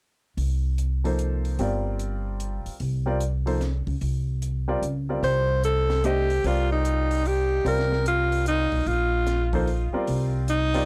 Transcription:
0.37 1.55 C2 medium
0.37 open hi-hat soft
0.78 closed hi-hat soft
1.04 1.56 F3 soft
1.04 1.57 A#3 soft
1.04 1.57 D#4 soft
1.04 1.57 A4 soft
1.04 1.57 C5 medium
1.04 open hi-hat soft
1.19 closed hi-hat soft
1.45 open hi-hat soft
1.59 2.62 G1 medium
1.59 2.72 G3 medium
1.59 2.72 C4 soft
1.59 2.73 F4 soft
1.59 2.73 A#4 soft
1.59 2.73 D5 medium
1.59 open hi-hat soft
1.99 closed hi-hat soft
2.40 closed hi-hat soft
2.66 muted upright bass stroke soft
2.66 open hi-hat soft
2.80 3.84 C2 medium
2.80 open hi-hat soft
3.06 3.19 G3 medium
3.06 3.19 C4 soft
3.06 3.20 F4 soft
3.06 3.20 A#4 soft
3.06 3.20 D5 medium
3.20 closed hi-hat soft
3.46 3.60 F3 soft
3.46 3.59 A#3 soft
3.46 3.60 D#4 soft
3.46 3.60 A4 soft
3.46 3.60 C5 medium
3.46 open hi-hat soft
3.61 snare soft
3.61 closed hi-hat soft
3.87 4.01 C#2 medium
3.87 kick soft
3.87 open hi-hat soft
4.01 4.79 C2 medium
4.01 open hi-hat soft
4.42 closed hi-hat soft
4.68 4.81 G3 medium
4.68 4.81 C4 medium
4.68 4.82 F4 medium
4.68 4.81 A#4 medium
4.68 4.82 D5 medium
4.82 5.20 C#2 medium
4.82 closed hi-hat soft
5.09 5.61 G3 medium
5.09 5.61 C4 soft
5.09 5.61 F4 soft
5.09 5.61 A#4 soft
5.09 5.61 D5 medium
5.23 6.40 C2 medium
5.23 5.61 C5 loud
5.23 open hi-hat soft
5.64 6.07 A4 medium
5.64 closed hi-hat soft
5.90 snare soft
5.90 open hi-hat soft
6.04 6.28 A3 medium
6.04 6.28 D4 medium
6.04 6.28 G4 soft
6.04 6.48 G4 medium
6.04 6.28 C5 medium
6.04 6.28 D#5 medium
6.04 closed hi-hat soft
6.30 open hi-hat soft
6.44 7.62 C2 medium
6.44 7.58 G3 medium
6.44 7.58 C4 soft
6.44 7.58 F4 soft
6.44 6.72 F4 medium
6.44 7.58 A#4 soft
6.44 7.58 D5 medium
6.44 open hi-hat soft
6.72 7.28 D#4 medium
6.85 closed hi-hat soft
7.11 open hi-hat soft
7.25 7.66 G4 medium
7.25 open hi-hat soft
7.65 8.68 C2 medium
7.65 8.78 G3 medium
7.65 8.78 C4 soft
7.65 8.78 F4 soft
7.65 8.79 A#4 soft
7.65 8.04 A#4 medium
7.65 8.78 D5 medium
7.65 open hi-hat soft
7.79 snare soft
7.93 snare soft
8.06 8.45 F4 medium
8.06 closed hi-hat soft
8.32 open hi-hat soft
8.46 8.89 D#4 medium
8.46 closed hi-hat soft
8.72 8.85 B1 medium
8.72 kick soft
8.72 open hi-hat soft
8.86 9.89 A#1 medium
8.86 9.54 F4 medium
8.86 open hi-hat soft
9.27 snare soft
9.27 closed hi-hat soft
9.53 9.66 F3 medium
9.53 9.66 A#3 medium
9.53 9.66 D#4 medium
9.53 9.67 A4 medium
9.53 9.67 C5 medium
9.53 kick soft
9.53 open hi-hat soft
9.67 open hi-hat soft
9.93 10.45 G3 medium
9.93 10.45 C4 medium
9.93 10.46 F4 medium
9.93 10.46 A#4 medium
9.93 10.46 D5 medium
9.93 muted upright bass stroke soft
10.07 10.85 C2 medium
10.07 open hi-hat soft
10.48 10.85 D#4 medium
10.48 closed hi-hat soft
10.74 10.85 G3 medium
10.74 10.85 C4 medium
10.74 10.85 F4 medium
10.74 10.85 A#4 medium
10.74 10.85 D5 medium
10.74 open hi-hat soft

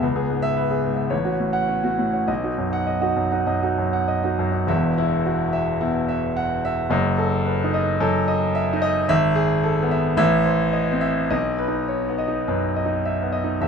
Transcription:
0.03 1.09 C#2 medium
0.03 0.24 B4 medium
0.16 0.38 B3 medium
0.16 0.38 G#4 medium
0.30 0.52 G#2 medium
0.42 0.65 E5 loud
0.57 0.79 B4 medium
0.71 0.93 B3 medium
0.71 0.93 G#4 medium
0.84 1.06 G#2 medium
0.96 1.11 B3 medium
0.96 1.11 E5 medium
1.10 2.24 A1 medium
1.10 1.34 C#5 medium
1.25 1.48 C#4 medium
1.25 1.48 F#4 medium
1.39 1.63 A2 medium
1.53 1.77 F#5 medium
1.68 1.92 C#4 medium
1.68 1.92 C#5 medium
1.84 1.97 A2 medium
1.84 2.08 F#4 medium
1.98 2.22 A2 medium
2.13 2.28 C#4 medium
2.13 2.29 F#5 medium
2.28 3.45 B1 medium
2.28 2.53 D#5 medium
2.44 2.68 D#4 medium
2.44 2.68 F#4 medium
2.58 2.83 F#2 medium
2.73 2.97 F#5 medium
2.87 3.12 D#5 medium
3.01 3.26 D#4 medium
3.01 3.27 F#4 medium
3.16 3.41 F#2 medium
3.31 3.57 D#4 medium
3.31 3.57 F#5 medium
3.47 3.72 F#2 medium
3.47 3.72 D#5 medium
3.63 3.88 D#4 medium
3.63 3.88 F#4 medium
3.78 4.03 F#2 medium
3.93 4.18 F#5 medium
4.08 4.33 D#5 medium
4.24 4.48 D#4 medium
4.24 4.48 F#4 medium
4.39 4.63 F#2 medium
4.52 4.68 D#4 medium
4.52 4.68 F#5 medium
4.67 5.76 E1 loud
4.67 5.77 E2 loud
4.67 5.14 E5 medium
4.98 5.43 E4 medium
5.26 5.53 F#4 medium
5.53 5.97 E5 medium
5.81 6.10 B2 medium
5.81 6.25 E4 medium
6.09 6.53 E5 medium
6.37 6.64 F#5 medium
6.65 6.91 E5 loud
6.90 7.97 F#1 medium
6.90 7.97 F#2 loud
6.90 7.34 D#5 medium
7.18 7.62 A4 medium
7.45 7.73 B4 medium
7.64 7.93 D#4 medium
7.74 8.17 D#5 medium
8.00 9.06 F#2 medium
8.00 8.44 A4 medium
8.28 8.71 D#5 medium
8.55 8.82 E5 medium
8.73 9.02 D#4 loud
8.82 9.09 D#5 loud
9.09 10.14 G#1 loud
9.09 9.52 E5 loud
9.35 9.79 G#4 medium
9.63 9.90 A4 medium
9.82 10.11 B3 medium
9.91 10.16 E5 medium
10.17 11.27 A1 loud
10.17 10.62 E5 loud
10.45 10.90 C5 medium
10.73 11.01 D#5 medium
10.92 11.22 C4 medium
11.01 11.30 E5 loud
11.30 12.43 B1 medium
11.30 11.76 D#5 medium
11.58 12.05 B4 medium
11.68 12.00 D#4 medium
11.88 12.17 C#5 medium
12.09 12.39 B3 medium
12.18 12.64 D#5 medium
12.28 12.59 D#4 medium
12.48 12.78 F#2 medium
12.48 12.93 B4 medium
12.76 13.21 D#5 medium
12.86 13.15 D#4 medium
13.05 13.33 E5 medium
13.22 13.53 B3 medium
13.32 13.61 D#5 medium
13.44 13.62 D#4 medium
13.61 13.68 E1 medium
13.61 13.68 E2 medium
13.61 13.68 E5 medium

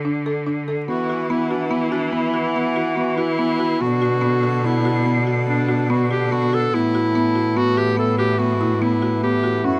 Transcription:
0.00 0.90 D3 medium
0.05 0.17 D4 medium
0.26 0.38 A4 medium
0.46 0.59 D4 medium
0.68 0.80 A4 medium
0.87 3.78 E3 medium
0.87 3.82 E3 medium
0.87 9.60 B3 medium
0.87 1.01 B3 medium
0.87 3.77 F#4 medium
0.87 1.32 F#4 medium
1.10 1.22 F#4 medium
1.30 1.43 B3 medium
1.30 1.52 E4 medium
1.50 1.72 D4 medium
1.50 1.63 F#4 medium
1.70 1.84 B3 medium
1.70 1.90 E4 medium
1.91 2.14 D4 medium
1.91 2.05 F#4 medium
2.12 2.25 B3 medium
2.12 2.97 E4 medium
2.34 2.46 F#4 medium
2.56 2.68 B3 medium
2.76 2.89 F#4 medium
2.96 3.10 B3 medium
2.96 3.18 F#4 medium
3.16 3.83 E4 loud
3.16 3.30 F#4 medium
3.39 3.51 B3 medium
3.59 3.72 F#4 medium
3.80 6.74 B2 medium
3.80 6.70 D3 medium
3.80 3.93 B3 medium
3.80 4.67 F#4 loud
3.80 9.61 A4 medium
4.02 4.14 F#4 medium
4.21 4.34 B3 medium
4.43 4.56 F#4 medium
4.64 4.77 B3 medium
4.64 5.21 E4 medium
4.85 4.98 F#4 medium
5.06 5.18 B3 medium
5.27 5.39 F#4 medium
5.47 5.60 B3 medium
5.47 5.91 D4 medium
5.69 5.81 F#4 medium
5.90 6.02 B3 medium
5.90 6.10 F#4 medium
6.11 6.23 F#4 medium
6.11 6.33 G4 medium
6.32 6.44 B3 medium
6.32 6.56 F#4 medium
6.53 6.65 F#4 medium
6.53 6.76 A4 loud
6.72 9.66 A2 medium
6.72 9.80 E3 medium
6.72 6.86 B3 medium
6.72 7.58 E4 loud
6.95 7.07 F#4 medium
7.16 7.28 B3 medium
7.36 7.48 F#4 medium
7.56 7.69 B3 medium
7.56 7.79 F#4 loud
7.77 7.90 F#4 medium
7.77 7.98 G4 loud
7.97 8.10 B3 medium
7.97 8.17 A4 medium
8.18 8.31 F#4 medium
8.18 8.40 G4 medium
8.39 8.52 B3 medium
8.39 8.82 F#4 medium
8.61 8.73 E4 medium
8.81 8.94 B3 medium
8.81 9.22 E4 medium
9.02 9.15 F#4 medium
9.23 9.36 B3 medium
9.23 9.66 G4 medium
9.44 9.56 F#4 medium
9.63 9.80 F#2 medium
9.63 9.80 A3 medium
9.63 9.77 C#4 medium
9.63 9.80 F#4 medium

